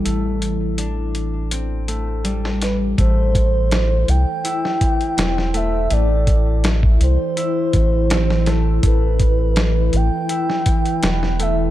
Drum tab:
HH |x-x-x-x-x-x-x-x-|x-x-x-x-x-xxx-x-|x-x-x-x-x-x-x-x-|x-x-x-x-x-xxx-x-|
SD |-------------oo-|----o----o--oo--|----o-------ooo-|----o----o--oo--|
BD |----------------|o-o-------o-----|--o--o----o-----|o-o-------o-----|